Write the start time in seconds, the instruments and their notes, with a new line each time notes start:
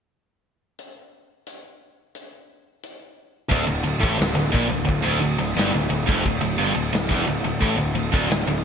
0.79 closed hi-hat
1.47 closed hi-hat
2.15 closed hi-hat
2.83 closed hi-hat
3.49 picked electric bass D1, distorted electric guitar D2, kick, crash
3.67 picked electric bass D1, distorted electric guitar D2
3.84 picked electric bass D1, distorted electric guitar D2, crash
4.00 picked electric bass A1, distorted electric guitar A2, kick
4.19 picked electric bass D1, distorted electric guitar D2, snare, crash
4.35 picked electric bass D1, distorted electric guitar D2
4.52 picked electric bass A#1, distorted electric guitar A#2, kick, crash
4.70 picked electric bass D1, distorted electric guitar D2
4.85 picked electric bass D1, distorted electric guitar D2, kick
4.90 crash
5.03 picked electric bass D1, distorted electric guitar D2
5.22 picked electric bass D1, distorted electric guitar D2, crash
5.38 picked electric bass D1, distorted electric guitar D2
5.43 snare
5.55 picked electric bass G1, distorted electric guitar G2, snare, crash
5.74 picked electric bass D1, distorted electric guitar D2
5.90 picked electric bass D1, distorted electric guitar D2, crash
6.07 picked electric bass F1, distorted electric guitar F2, kick, snare
6.26 picked electric bass D1, distorted electric guitar D2, kick, crash
6.41 picked electric bass D1, distorted electric guitar D2
6.58 picked electric bass G1, distorted electric guitar G2, crash
6.75 picked electric bass D1, distorted electric guitar D2
6.93 picked electric bass D1, distorted electric guitar D2, snare, crash
7.09 picked electric bass E1, distorted electric guitar E2, kick
7.27 picked electric bass D1, distorted electric guitar D2, crash
7.44 picked electric bass D1, distorted electric guitar D2
7.60 picked electric bass A1, distorted electric guitar A2, kick, crash
7.77 picked electric bass D1, distorted electric guitar D2
7.95 picked electric bass D1, distorted electric guitar D2, crash
8.12 picked electric bass D1, distorted electric guitar D2, kick
8.30 picked electric bass D1, distorted electric guitar D2, snare, crash
8.47 picked electric bass D1, distorted electric guitar D2